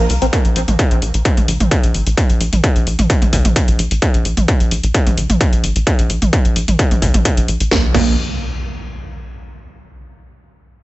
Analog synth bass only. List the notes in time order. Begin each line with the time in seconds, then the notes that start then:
0.10 C2
0.22 A#1
0.45 A#1
0.56 A#1
0.68 A#1
0.91 A#1
1.02 A#1
1.14 A#1
1.37 A#1
1.48 A#1
1.60 A#1
1.83 A#1
1.94 G#1
2.07 A#1
2.30 A#1
2.41 A#1
2.53 A#1
2.76 A#1
2.87 A#1
2.99 A#1
3.22 A#1
3.33 A#1
3.45 A#1
3.68 A#1
3.79 A#1
3.91 A#1
4.14 A#1
4.25 A#1
4.37 A#1
4.60 A#1
4.71 A#1
4.83 A#1
5.07 A#1
5.18 A#1
5.30 A#1
5.53 A#1
5.64 G#1
5.76 A#1
5.99 A#1
6.10 A#1
6.22 A#1
6.45 A#1
6.56 A#1
6.68 A#1
6.91 A#1
7.02 A#1
7.14 A#1
7.37 A#1
7.48 A#1
7.60 A#1
7.71 A#1
7.95 A#1